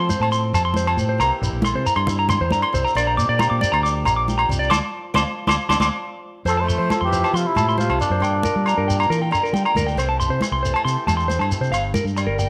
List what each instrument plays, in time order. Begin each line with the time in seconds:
Already playing: steel-string acoustic guitar F2 F3 A3 C4 A4
0.00 clean electric guitar C6
0.09 clean electric guitar C5, high conga, shekere
0.20 fingered electric bass A2, clean electric guitar A5, low agogo
0.31 steel-string acoustic guitar C4, clean electric guitar C6, muted conga, shekere
0.53 fingered electric bass F2, steel-string acoustic guitar C3, clean electric guitar A5, muted conga, low agogo, shekere
0.65 clean electric guitar C6
0.74 steel-string acoustic guitar G4, clean electric guitar C5, high conga, shekere
0.87 clean electric guitar A5, low agogo
0.97 fingered electric bass A2, steel-string acoustic guitar C4, shekere
1.09 clean electric guitar C5
1.18 fingered electric bass C2, steel-string acoustic guitar C3 E3 A#3 E4, clean electric guitar A#5, muted conga, low agogo, shekere
1.23 steel-string acoustic guitar G4
1.41 fingered electric bass A#1, steel-string acoustic guitar E4, muted clean electric guitar stroke, shekere
1.53 fingered electric bass A#1
1.62 steel-string acoustic guitar E3 A4, clean electric guitar C6, muted conga, high conga, low agogo, shekere
1.75 fingered electric bass C3, clean electric guitar C5
1.86 clean electric guitar A#5, shekere
1.96 fingered electric bass G2, clean electric guitar C6, low agogo
2.07 steel-string acoustic guitar E4, muted clean electric guitar stroke, muted conga, low conga, shekere
2.19 clean electric guitar A#5
2.29 steel-string acoustic guitar G2, clean electric guitar C6, muted conga, high conga, low conga, low agogo, shekere
2.41 fingered electric bass E2, clean electric guitar C5
2.50 fingered electric bass G2, steel-string acoustic guitar D3, clean electric guitar A#5, high conga, shekere
2.62 clean electric guitar C6, low agogo
2.73 fingered electric bass C2, steel-string acoustic guitar C3, clean electric guitar C5, shekere
2.85 clean electric guitar A#5, shekere
2.95 fingered electric bass A#1, steel-string acoustic guitar F3 A#3 D4 G4, clean electric guitar D5, muted steel-string acoustic guitar stroke, muted conga, low agogo, shekere
3.07 clean electric guitar A#5
3.17 fingered electric bass A#2, steel-string acoustic guitar D4, clean electric guitar D6, shekere
3.29 fingered electric bass A#2, clean electric guitar D5
3.39 steel-string acoustic guitar F3 G4, clean electric guitar A#5, muted conga, high conga, low agogo, shekere
3.50 fingered electric bass A#2, clean electric guitar D6
3.61 clean electric guitar D5, high conga, shekere
3.72 fingered electric bass D2, clean electric guitar A#5, low agogo
3.83 steel-string acoustic guitar D4, clean electric guitar D6, muted conga, shekere
4.04 fingered electric bass A#1, steel-string acoustic guitar F2, clean electric guitar A#5, muted conga, low agogo, shekere
4.16 clean electric guitar D6
4.28 steel-string acoustic guitar G4, high conga, shekere
4.38 clean electric guitar A#5, low agogo
4.49 fingered electric bass C2, steel-string acoustic guitar D4, shekere
4.59 clean electric guitar D5
4.64 shekere
4.70 fingered electric bass D2, steel-string acoustic guitar C4 D4 F4, clean electric guitar A5 C6 D6, high conga, low agogo, shekere
5.14 fingered electric bass D2, steel-string acoustic guitar C4 D4 F4, clean electric guitar A5 C6 D6, high conga, low agogo, shekere
5.47 fingered electric bass D2, steel-string acoustic guitar C4 D4 F4, clean electric guitar A5 C6 D6, high conga, low agogo, shekere
5.69 fingered electric bass D2, steel-string acoustic guitar C4 D4 F4, clean electric guitar A5 C6 D6, high conga, low agogo, shekere
5.80 fingered electric bass D2, steel-string acoustic guitar C4 D4 F4, clean electric guitar A5 C6 D6, high conga, low agogo, shekere
6.45 fingered electric bass F2, steel-string acoustic guitar F2, muted trumpet A4, clean electric guitar C5, muted conga, low agogo, shekere
6.50 tenor saxophone F3
6.57 muted trumpet C5, clean electric guitar A5
6.62 tenor saxophone A3
6.68 clean electric guitar C6, shekere
6.78 fingered electric bass F3, clean electric guitar C5
6.90 steel-string acoustic guitar F3, muted trumpet A4, clean electric guitar A5, muted conga, high conga, low agogo, shekere
6.95 tenor saxophone F3
7.01 fingered electric bass F2, muted trumpet G4, clean electric guitar C6
7.06 tenor saxophone E3
7.12 steel-string acoustic guitar A3, clean electric guitar C5, shekere
7.24 clean electric guitar A5, low agogo, shekere
7.33 tenor saxophone C3, fingered electric bass F3, steel-string acoustic guitar C4, muted trumpet F4, clean electric guitar C6, muted conga, shekere
7.47 tenor saxophone C3, muted trumpet E4
7.55 fingered electric bass A2, steel-string acoustic guitar C3, clean electric guitar A5, muted conga, high conga, low agogo, shekere
7.69 clean electric guitar C6, shekere
7.78 tenor saxophone C3, steel-string acoustic guitar A3, muted trumpet F4, clean electric guitar C5, high conga, shekere
7.89 fingered electric bass C2, clean electric guitar A5, low agogo
8.00 tenor saxophone A#2, muted trumpet D4, muted steel-string acoustic guitar stroke, shekere
8.10 fingered electric bass F#2, clean electric guitar C5
8.20 steel-string acoustic guitar G2, fingered electric bass G2, clean electric guitar G5, muted conga, low agogo, shekere
8.43 clean electric guitar A#4, high conga, shekere
8.56 fingered electric bass G3
8.66 steel-string acoustic guitar G3, clean electric guitar A#5, muted conga, low agogo, shekere
8.78 fingered electric bass G2, clean electric guitar A#4
8.88 steel-string acoustic guitar A#3, clean electric guitar G5, shekere
9.00 clean electric guitar A#5, low agogo, shekere
9.08 fingered electric bass E3, steel-string acoustic guitar F4, clean electric guitar A#4, muted conga, shekere
9.22 clean electric guitar G5
9.31 steel-string acoustic guitar D3, clean electric guitar A#5, muted conga, low agogo, shekere
9.43 clean electric guitar A#4, shekere
9.53 fingered electric bass G3, steel-string acoustic guitar A#3, clean electric guitar G5, high conga, shekere
9.65 clean electric guitar A#5, low agogo
9.75 fingered electric bass D2, steel-string acoustic guitar D4, clean electric guitar A#4, high conga, shekere
9.87 clean electric guitar G5, shekere
9.97 fingered electric bass C2, steel-string acoustic guitar E3 A3 E4 G4, clean electric guitar C5, muted steel-string acoustic guitar stroke, muted conga, low agogo, shekere
10.09 clean electric guitar A5
10.20 clean electric guitar C6, shekere
10.29 fingered electric bass C3, clean electric guitar C5
10.41 steel-string acoustic guitar E3, muted conga, high conga, low agogo, shekere
10.52 fingered electric bass C2, clean electric guitar C6
10.63 steel-string acoustic guitar A3, clean electric guitar C5, shekere
10.74 clean electric guitar A5, low agogo
10.85 fingered electric bass C3, steel-string acoustic guitar G4, clean electric guitar C6, muted conga, shekere
11.07 fingered electric bass E2, steel-string acoustic guitar G2, clean electric guitar A5, muted conga, high conga, low agogo, shekere
11.17 clean electric guitar C6, shekere
11.28 steel-string acoustic guitar A3, clean electric guitar C5, high conga, shekere
11.39 fingered electric bass G2, clean electric guitar A5, low agogo
11.51 steel-string acoustic guitar E4, shekere
11.61 fingered electric bass C3, clean electric guitar C5, shekere
11.71 fingered electric bass G1, steel-string acoustic guitar G2, clean electric guitar F5, muted conga, low agogo, shekere
11.94 clean electric guitar A#4, high conga, shekere
12.04 fingered electric bass G2, shekere
12.17 steel-string acoustic guitar G3, muted clean electric guitar stroke, muted conga, low agogo, shekere
12.27 fingered electric bass G1, clean electric guitar A#4
12.39 steel-string acoustic guitar A#3, clean electric guitar G5, shekere